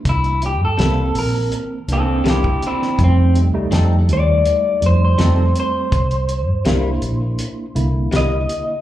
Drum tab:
HH |xxx-x-o-x-x-x-x-|x-x-x-x-x-x-x-x-|xxx-x-x-x-x-x-x-|
SD |----o-------o--o|----o-------o---|----o-------o---|
BD |o------------o--|o---------------|o---------------|